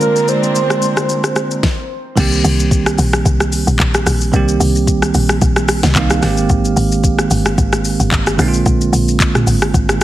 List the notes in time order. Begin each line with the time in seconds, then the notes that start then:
Already playing: D3 G#3 A#3 C4 D4 F4 A#4
0.01 A#4, shaker
0.16 shaker
0.28 C5, shaker
0.43 shaker
0.55 shaker
0.70 cross-stick, shaker
0.82 shaker
0.97 cross-stick, shaker
1.09 shaker
1.24 cross-stick, shaker
1.36 cross-stick, shaker
1.51 shaker
1.63 kick, snare
2.16 C2 D#3 G3 A#3 C4, kick, crash, shaker
2.20 G4
2.32 shaker
2.44 C2, open hi-hat, shaker
2.60 shaker
2.71 kick, shaker
2.86 cross-stick, shaker
2.98 A#1, open hi-hat, shaker
3.13 cross-stick, shaker
3.25 C2, kick, shaker
3.40 cross-stick, shaker
3.52 open hi-hat, shaker
3.67 A#1, shaker
3.79 A#1, kick, clap, shaker
3.94 cross-stick, shaker
4.06 A#1, cross-stick, open hi-hat, shaker
4.21 shaker
4.32 C2 D#3 G3 A#3 C4, kick, shaker
4.36 G4
4.48 shaker
4.60 C2, open hi-hat, shaker
4.76 shaker
4.87 kick, shaker
5.02 cross-stick, shaker
5.14 A#1, open hi-hat, shaker
5.29 cross-stick, shaker
5.42 A#1, kick, shaker
5.56 cross-stick, shaker
5.68 cross-stick, open hi-hat, shaker
5.83 C2, snare, shaker
5.95 C2 D#3 G3 A#3 C4 D#4 F5, kick, clap, shaker
6.10 cross-stick, shaker
6.21 G#1 D#3 G#3 A#3 C4, cross-stick, snare, open hi-hat, shaker
6.25 G4
6.37 shaker
6.50 G#1, kick, shaker
6.65 shaker
6.76 G#1, open hi-hat, shaker
6.92 shaker
7.04 kick, shaker
7.19 cross-stick, shaker
7.31 G1, open hi-hat, shaker
7.46 cross-stick, shaker
7.58 G#1, kick, shaker
7.73 cross-stick, shaker
7.85 open hi-hat, shaker
8.00 G1, shaker
8.12 G1, kick, clap, shaker
8.27 cross-stick, shaker
8.37 A#1 D3 G#3 A#3 C4, cross-stick, open hi-hat, shaker
8.42 D#4
8.48 F4
8.54 shaker
8.66 A#1, kick, shaker
8.81 shaker
8.93 A#1, open hi-hat, shaker
9.08 shaker
9.20 kick, clap, shaker
9.35 cross-stick, mid tom, shaker
9.47 G#1, open hi-hat, shaker
9.62 cross-stick, shaker
9.74 G#1, kick, shaker
9.89 cross-stick, shaker